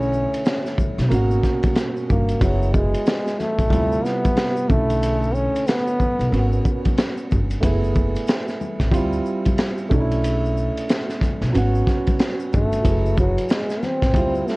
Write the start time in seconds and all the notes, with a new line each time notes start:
Already playing: B1 D3 A3 C#4 E4
0.02 shaker
0.13 shaker
0.34 ride, shaker
0.45 snare, hi-hat pedal, ride, shaker
0.66 snare, shaker
0.78 kick, high conga, low conga, shaker
0.98 B1, snare, ride, shaker
1.09 G#1 B2 A#3 C#4, ride, high conga, shaker
1.14 F#4
1.31 shaker
1.43 kick, snare, shaker
1.63 kick, ride, high conga, shaker
1.75 snare, hi-hat pedal, ride, shaker
1.96 shaker
2.10 G1 A#3, kick, low conga, shaker
2.29 ride, shaker
2.39 F#1 F#3 B3 E4, kick, ride, shaker
2.44 G#4
2.62 shaker
2.74 G#3, kick, shaker
2.94 ride, shaker
3.06 snare, hi-hat pedal, ride, shaker
3.27 snare, shaker
3.39 A3, snare, high conga, low conga, shaker
3.58 A1, kick, ride, shaker
3.70 D2 C3 G3 E4 F4, kick, ride, high conga, shaker
3.92 shaker
4.04 B3, snare, shaker
4.24 kick, ride, high conga, shaker
4.37 snare, hi-hat pedal, ride, shaker
4.57 shaker
4.68 B1 D3 A3 C#4, kick, low conga, shaker
4.73 E4
4.90 ride, shaker
5.03 ride, shaker
5.23 shaker
5.34 C#4, shaker
5.56 ride, shaker
5.67 B3, snare, hi-hat pedal, ride, shaker
5.87 shaker
6.00 kick, high conga, low conga, shaker
6.19 B1, ride, shaker
6.30 G#1 B3 C#4 A#4, high conga, shaker
6.34 F#4, ride
6.52 shaker
6.65 kick, shaker
6.85 kick, ride, high conga, shaker
6.98 snare, hi-hat pedal, ride, shaker
7.17 shaker
7.31 G1, kick, low conga, shaker
7.50 ride, shaker
7.60 F#1 A3 B3 E4, kick, ride, shaker
7.65 G#4
7.84 shaker
7.95 kick, shaker
8.15 ride, shaker
8.27 snare, hi-hat pedal, ride, shaker
8.48 snare, shaker
8.61 high conga, low conga, shaker
8.80 A1, kick, snare, ride, shaker
8.91 D2 G3 C4 E4 F4, kick, ride, high conga, shaker
9.13 shaker
9.26 shaker
9.45 kick, ride, high conga, shaker
9.58 snare, hi-hat pedal, ride, shaker
9.78 shaker
9.89 B1 A3 C#4 D4, kick, low conga, shaker
9.93 D#4
10.00 E4
10.12 ride, shaker
10.24 ride, shaker
10.45 shaker
10.57 shaker
10.77 ride, shaker
10.89 snare, hi-hat pedal, ride, shaker
11.09 snare, shaker
11.21 kick, snare, high conga, low conga, shaker
11.41 B1, snare, ride, shaker
11.52 G#1 F#3 B3 C#4, ride, high conga, shaker
11.57 F#4
11.75 shaker
11.87 kick, snare, shaker
12.07 kick, ride, high conga, shaker
12.19 snare, hi-hat pedal, ride, shaker
12.40 shaker
12.53 G1 A3, kick, low conga, shaker
12.73 ride, shaker
12.82 F#1 F#3 E4 B4, kick, ride, shaker
12.87 G#4
13.06 shaker
13.17 F#3, kick, shaker
13.38 ride, shaker
13.49 G#3, snare, hi-hat pedal, ride, shaker
13.70 snare, shaker
13.83 C4, snare, high conga, low conga, shaker
14.02 A1, kick, snare, ride, shaker
14.14 D2 G3 C4 E4 F4, kick, ride, high conga, shaker
14.35 shaker
14.48 A3, snare, shaker